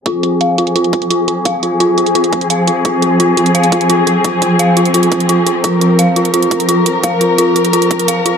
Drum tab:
HH |x-x-x-xxxxxxx-x-|x-x-x-xxxxxxx-x-|x-x-x-xxxxxxx-x-|x-x-x-xxxxxxx-x-|
BD |o---------o-----|o---------o-----|o---------o-----|o-o-------o-----|

HH |x-x-x-xxxxxxx-x-|x-x-x-xxxxxxx-x-|
BD |o---------o-----|o---------o-----|